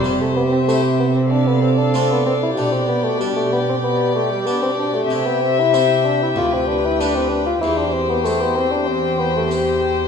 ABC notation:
X:1
M:4/4
L:1/16
Q:1/4=95
K:C
V:1 name="Violin section"
e8 f8 | g16- | g16 | g16 |]
V:2 name="Violin section"
c8 d8- | d16 | e8 B8 | c16 |]
V:3 name="Viola section"
G8 A8 | G16- | G16 | G16 |]
V:4 name="Bassoon"
G, A, B, C A,2 B, C D B, C D C B, C E | D C B, A, G, A, B, C B,2 A, G, B, C D A,- | A, B, C E C2 D E F C D E D C D F | E D C B, A, B, C D C2 B, A, z4 |]
V:5 name="Harpsichord"
z4 [CE]4 z4 [A,DF]4 | z4 D4 z4 D4 | z4 [CE]4 z4 [B,D]4 | z4 C4 z4 C4 |]
V:6 name="Harpsichord" clef=bass
C,16 | B,,16 | C,8 D,,8 | E,,16 |]
V:7 name="Cello section" clef=bass
C,16 | B,,16 | C,8 D,,8 | E,,16 |]